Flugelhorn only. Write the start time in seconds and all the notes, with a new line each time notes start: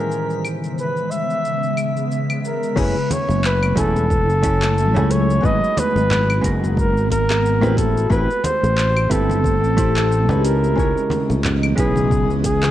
Already playing: A#4
0.79 B4
1.11 E5
2.46 A#4
2.80 B4
3.12 C#5
3.46 B4
3.78 A4
5.11 C#5
5.45 D#5
5.79 B4
6.78 A#4
7.12 A#4
7.78 A4
8.11 B4
8.44 C5
9.12 A4
10.45 A#4
11.78 G#4
12.46 G#4